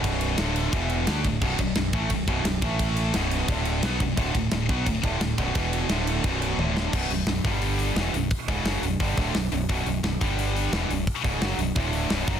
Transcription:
<<
  \new Staff \with { instrumentName = "Distorted electric guitar" } { \clef bass \time 4/4 \key b \minor \tempo 4 = 174 <b,, fis, b,>4 <d, a, d>4 <e, b, e>4 <d a d'>8 <d, a,>8 | <b,, fis, b,>8 <b,, fis,>8 <b,, fis,>8 <a, e a>8 <b,, fis,>8 <b,, fis, b,>8 <b,, fis,>8 <a, e a>8~ | <a, e a>4 <b,, fis, b,>4 <d, a, d>4 <b, fis b>8 <b,, fis,>8 | <d, a, d>8 <d, a,>8 <d, a,>8 <b, fis b>8 <d, a,>8 <d, a, d>8 <d, a,>8 <b,, fis, b,>8 |
<e, b, e>4 <d, a, d>4 <b,, fis, b,>4 <d, a, d>4 | <b,, fis, b,>8 <b,, fis,>8 <b,, fis,>8 <g, d g>4. <e, b, e>8 <b,, fis,>8 | r8 <cis, gis, cis>8 <fis, cis fis>8 <b,, fis,>8 <g, d g>8 <d, a, d>8 <b,, fis,>8 <b,, fis,>8 | <b,, fis, b,>8 <b,, fis,>8 <b,, fis,>8 <g, d g>4. <e, b, e>8 <b,, fis,>8 |
r8 <cis, gis, cis>8 <fis, cis fis>8 <b,, fis,>8 <d, a, d>4 <b,, fis, b,>8 <fis, cis fis>8 | }
  \new Staff \with { instrumentName = "Distorted electric guitar" } { \clef bass \time 4/4 \key b \minor <b,, fis, b,>4 <d, a, d>4 <e, b, e>4 <d a d'>8 <d, a,>8 | <b,, fis, b,>8 <b,, fis,>8 <b,, fis,>8 <a, e a>8 <b,, fis,>8 <b,, fis, b,>8 <b,, fis,>8 <a, e a>8~ | <a, e a>4 <b,, fis, b,>4 <d, a, d>4 <b, fis b>8 <b,, fis,>8 | <d, a, d>8 <d, a,>8 <d, a,>8 <b, fis b>8 <d, a,>8 <d, a, d>8 <d, a,>8 <b,, fis, b,>8 |
<e, b, e>4 <d, a, d>4 <b,, fis, b,>4 <d, a, d>4 | <b,, fis, b,>8 <b,, fis,>8 <b,, fis,>8 <g, d g>4. <e, b, e>8 <b,, fis,>8 | r8 <cis, gis, cis>8 <fis, cis fis>8 <b,, fis,>8 <g, d g>8 <d, a, d>8 <b,, fis,>8 <b,, fis,>8 | <b,, fis, b,>8 <b,, fis,>8 <b,, fis,>8 <g, d g>4. <e, b, e>8 <b,, fis,>8 |
r8 <cis, gis, cis>8 <fis, cis fis>8 <b,, fis,>8 <d, a, d>4 <b,, fis, b,>8 <fis, cis fis>8 | }
  \new Staff \with { instrumentName = "Fingered electric bass" } { \clef bass \time 4/4 \key b \minor b,,,4 d,,4 e,,4 d,8 d,,8 | b,,,8 b,,,8 b,,,8 a,,8 b,,,8 b,,,8 b,,,8 a,,8~ | a,,4 b,,,4 d,,4 b,,8 b,,,8 | d,,8 d,,8 d,,8 b,,8 d,,8 d,,8 d,,8 b,,,8 |
e,,4 d,,4 b,,,4 d,,4 | b,,,8 b,,,8 b,,,8 g,,4. e,,8 b,,,8 | r8 cis,,8 fis,,8 b,,,8 g,,8 d,,8 b,,,8 b,,,8 | b,,,8 b,,,8 b,,,8 g,,4. e,,8 b,,,8 |
r8 cis,,8 fis,,8 b,,,8 d,,4 b,,,8 fis,,8 | }
  \new DrumStaff \with { instrumentName = "Drums" } \drummode { \time 4/4 <bd cymr>8 cymr8 <cymr sn>8 cymr8 <bd cymr>8 cymr8 <cymr sn>8 <bd cymr>8 | <cymc bd>8 <bd cymr>8 <cymr sn>8 <bd cymr>8 <bd cymr>8 <bd cymr>8 <cymr sn>8 <bd cymr>8 | <bd cymr>8 cymr8 <cymr sn>8 cymr8 <bd cymr>8 cymr8 <cymr sn>8 <bd cymr>8 | <bd cymr>8 <bd cymr>8 <cymr sn>8 <bd cymr>8 <bd cymr>8 <bd cymr>8 <cymr sn>8 <bd cymr>8 |
<bd cymr>8 cymr8 <cymr sn>8 cymr8 <bd cymr>8 cymr8 tommh8 sn8 | <cymc bd>8 hho8 <hho sn>8 <hho bd>8 hho8 hho8 <hho sn>8 hho8 | <hho bd>8 <hho bd>8 <hho sn>8 hho8 <hho bd>8 <hho bd>8 <hho sn>8 hho8 | <hho bd>8 hho8 <hho sn>8 <hho bd>8 hho8 hho8 <hho sn>8 hho8 |
<hho bd>8 <hho bd>8 <hho sn>8 hho8 <hho bd>8 hho8 <hho sn>8 <hho bd>8 | }
>>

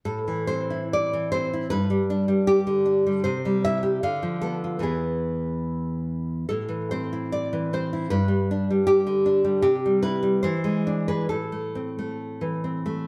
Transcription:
\new Staff \with { instrumentName = "Nylon-string guitar" } { \time 2/4 \key a \minor \tempo 4 = 74 << { a'8 c''8 d''8 c''8 | b'4 g'4 | c''8 e''8 f''8 a'8 | gis'4. r8 |
a'8 c''8 d''8 c''8 | b'4 g'4 | g'8 b'8 c''8. b'16 | a'4. r8 | } \\ { a,16 e16 c'16 e'8 e16 c'16 e'16 | g,16 g16 d'16 g8 d16 d'16 g16 | c16 g16 e'16 g'16 d16 f16 b16 f'16 | <e, e b>2 |
a,16 e16 c'16 e'8 e16 c'16 e'16 | g,16 g16 d'16 g8 d16 d'16 g16 | c16 g16 e'16 g16 e16 gis16 d'16 gis'16 | a,16 a16 c'16 a8 e16 c'16 a16 | } >> }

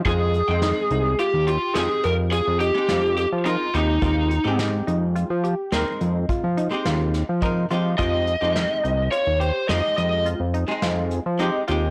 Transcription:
<<
  \new Staff \with { instrumentName = "Lead electric guitar" } { \time 7/4 \key f \minor \tempo 4 = 106 aes'2 g'8 f'8 aes'8 bes'8 aes'8 g'4 g'8 f'8 ees'8~ | ees'4 r1. | ees''2 des''8 c''8 ees''8 ees''8 r2. | }
  \new Staff \with { instrumentName = "Synth arpeggio sound" } { \time 7/4 \key f \minor f'4 ees'8 ees'8 f'8 g'4 r8 f'8 ees'8 f'4 ees'8 f'8 | f'4 ees'8 ees'8 f'8 g'4 r8 f'8 ees'8 f'4 ees'8 f'8 | f'4 ees'8 ees'8 f'8 g'4 r8 f'8 ees'8 f'4 ees'8 f'8 | }
  \new Staff \with { instrumentName = "Hollow-body jazz guitar" } { \time 7/4 \key f \minor <aes c' ees' aes'>8 r16 <aes c' ees' g''>4. r8. <aes c' ees' g'>4~ <aes c' ees' g'>16 r8 <aes c' ees' g'>4 r16 <aes c' ees' bes'>16 r16 <aes c' ees' g'>16 r16 | <aes c' ees' g'>8 r16 <aes c' ees' g'>4. r8. <aes c' ees' bes'>4~ <aes c' ees' bes'>16 r8 <aes c' ees' g'>4 r16 <aes c' ees' bes'>16 r16 <aes c' ees' g'>16 r16 | <aes c' ees' g'>8 r16 <aes c' ees' g'>4. r8. <aes c' ees' g'>4~ <aes c' ees' g'>16 r8 <aes c' ees' aes'>4 r16 <aes c' ees' g'>16 r16 <aes c' ees' g'>16 r16 | }
  \new Staff \with { instrumentName = "Analog synth bass" } { \clef bass \time 7/4 \key f \minor f,8. f,8 r16 c,8 r16 ees,8 r16 f,16 r16 f,8. f,8 r16 f,8. f8 r16 ees,8 | ees,8. aes,8. f,8. f8 r16 ees,16 r16 f,8 r16 f8 r16 ees,8. f8. f8 | f,8. f,8 r16 c,8 r16 ees,8 r16 f,16 r16 f,8. f,8 r16 f,8. f8 r16 ees,8 | }
  \new DrumStaff \with { instrumentName = "Drums" } \drummode { \time 7/4 <hh bd>8 hh8 <hh sn>8 hh8 hh8 hh8 <hh sn>8 hh8 hh8 hh8 <hh sn>8 hh8 hh8 hh8 | <hh bd>8 hh8 <hh sn>8 hh8 hh8 hh8 <hh sn>8 hh8 <hh bd>8 hh8 <hh sn>8 <hh sn>8 <hh bd>8 hh8 | <hh bd>8 hh8 <hh sn>8 hh8 hh8 hh8 <hh sn>8 hh8 hh8 hh8 <hh sn>8 hh8 hh8 hh8 | }
>>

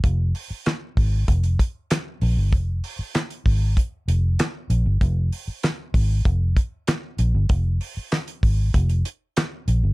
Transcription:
<<
  \new Staff \with { instrumentName = "Fingered electric bass" } { \clef bass \time 4/4 \key f \minor \tempo 4 = 96 f,,8 r4 aes,,8 f,,8 r4 bes,,16 g,,16 | f,,8 r4 aes,,8 r8 f,,8 r8 bes,,16 g,,16 | f,,8 r4 aes,,8 f,,8 r4 bes,,16 g,,16 | f,,8 r4 aes,,8 f,,8 r4 bes,,16 g,,16 | }
  \new DrumStaff \with { instrumentName = "Drums" } \drummode { \time 4/4 <hh bd>8 hho8 <hc hh sn>8 <hho bd>8 <hh bd>16 hh16 <hh bd>8 <hc hh sn>8 hho8 | <hh bd>8 hho8 <hc hh sn>16 hh16 <hho bd>8 <hh bd>8 hh8 <hc hh sn>8 hh8 | <hh bd>8 hho8 <hc hh sn>8 <hho bd>8 <hh bd>8 <hh bd>8 <hc hh sn>8 hh8 | <hh bd>8 hho8 <hc hh sn>16 hh16 <hho bd>8 <hh bd>16 hh16 hh8 <hc hh sn>8 hh8 | }
>>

